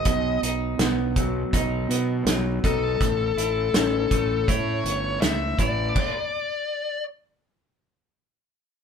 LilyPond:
<<
  \new Staff \with { instrumentName = "Lead electric guitar" } { \time 4/4 \key a \minor \tempo 4 = 81 ees''8 r2. a'8~ | a'2 cis''4 e''8 d''8~ | d''4. r2 r8 | }
  \new Staff \with { instrumentName = "Clean electric guitar" } { \time 4/4 \key a \minor b,8 dis'8 b8 fis8 dis'8 b8 fis8 dis'8 | a,8 e'8 cis'8 a8 e'4 a8 e'8 | r1 | }
  \new Staff \with { instrumentName = "Fingered electric bass" } { \clef bass \time 4/4 \key a \minor b,,8 b,,8 b,,4 b,,8 b,8 b,,8 b,,8 | a,,8 a,,8 a,,8 a,,8 a,8 g,,8 cis,8 a,,8 | r1 | }
  \new DrumStaff \with { instrumentName = "Drums" } \drummode { \time 4/4 <hh bd>8 hh8 <hh sn>8 <hh bd>8 <hh bd>8 hh8 <hh sn>8 <hh bd>8 | <hh bd>8 hh8 <hh sn>8 <hh bd>8 <hh bd>8 hh8 <hh sn>8 <hh bd>8 | <cymc bd>4 r4 r4 r4 | }
>>